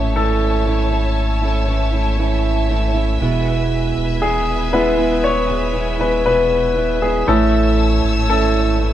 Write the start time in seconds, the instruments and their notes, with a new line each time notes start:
Already playing: sub bass G#1, steel-string acoustic guitar A2 E3 A3 C#4 E4, grand piano A3 C#4 E4 C#5, string section C#5 E5 A5
0.16 steel-string acoustic guitar E3 A3 C#4 E4, grand piano A4
0.66 steel-string acoustic guitar E3 A3 C#4 E4
0.91 steel-string acoustic guitar A3 C#4 E4
1.42 steel-string acoustic guitar A3 C#4 E4
1.68 steel-string acoustic guitar E3 A3 C#4 E4
1.93 steel-string acoustic guitar A3 C#4 E4
2.19 steel-string acoustic guitar E3 A3 C#4 E4
2.69 steel-string acoustic guitar E3 A3 C#4 E4
2.94 steel-string acoustic guitar A3 C#4 E4
3.20 sub bass E1, steel-string acoustic guitar E2 B2 E3 G#3 B3 E4, string section B4 G#5
3.97 sub bass D#1
4.22 steel-string acoustic guitar B2 E3 G#3 B3 E4, grand piano G#4
4.72 steel-string acoustic guitar E3 G#3 B3 E4, grand piano G#3 B3 E4 B4
4.98 steel-string acoustic guitar E3 G#3 B3 E4
5.24 grand piano C#5
5.49 steel-string acoustic guitar E3 G#3 B3 E4
5.74 steel-string acoustic guitar E3 G#3 B3 E4
6.00 steel-string acoustic guitar E3 G#3 B3 E4, grand piano B4
6.25 steel-string acoustic guitar B2 E3 G#3 B3 E4, grand piano B4
6.75 steel-string acoustic guitar E3 G#3 B3 E4
7.01 steel-string acoustic guitar E3 G#3 B3 E4, grand piano G#4
7.27 sub bass A1, steel-string acoustic guitar A2 E3 A3 C#4 E4, grand piano A3 C#4 E4 A4, string section C#5 A5 E6
8.04 sub bass G#1
8.29 steel-string acoustic guitar E3 A3 C#4 E4, grand piano A4
8.80 steel-string acoustic guitar E3 A3 C#4 E4